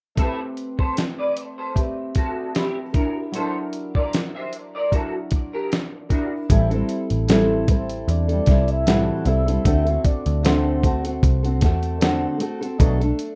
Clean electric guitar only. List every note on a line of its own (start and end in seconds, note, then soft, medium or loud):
0.18 0.39 E4 medium
0.18 0.38 A4 medium
0.79 0.96 A4 soft
0.79 0.96 C5 medium
1.19 1.36 B4 soft
1.19 1.35 D5 medium
1.58 1.75 A4 soft
1.58 1.75 C5 medium
2.17 2.54 F#4 medium
2.17 2.54 A4 medium
2.55 2.76 E4 soft
2.55 2.76 G4 medium
2.95 3.16 F#4 soft
2.95 3.15 A#4 medium
3.35 3.55 A4 medium
3.35 3.55 C5 medium
3.95 4.12 A#4 medium
3.95 4.12 D5 medium
4.35 4.52 C5 medium
4.35 4.52 E5 medium
4.75 4.92 A#4 soft
4.75 4.91 D5 medium
4.93 5.13 F#4 medium
4.93 5.13 A4 medium
5.53 5.70 G4 soft
5.53 5.70 A#4 medium
6.10 6.31 D4 medium
6.10 6.31 F#4 medium